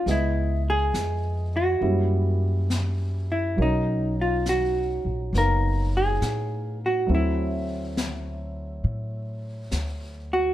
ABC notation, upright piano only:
X:1
M:4/4
L:1/8
Q:"Swing" 1/4=68
K:Blyd
V:1 name="Upright piano"
[G,B,=Ed]4 [=G,A,CE]4 | [F,CDA]4 [B,De]4 | [F,=A,=C=E]8 |]